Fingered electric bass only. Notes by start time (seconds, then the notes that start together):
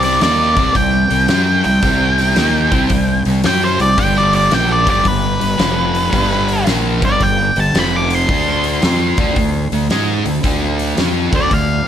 Already playing: C2
0.22 D#2
0.57 C2
0.76 C2
1.11 C2
1.29 F#2
1.65 C2
1.83 C2
2.37 D#2
2.72 C2
2.90 C2
3.26 C2
3.45 F#2
3.79 C2
3.98 G1
4.52 A#1
4.87 G1
5.05 G1
5.42 G1
5.59 F1
6.13 G1
6.67 A#1
7.03 G1
7.21 G1
7.56 G1
7.75 F1
8.29 D2
8.84 F2
9.18 D2
9.36 D2
9.72 D2
9.90 G#2
10.26 D2
10.44 D2
10.98 F2
11.32 D2
11.51 D2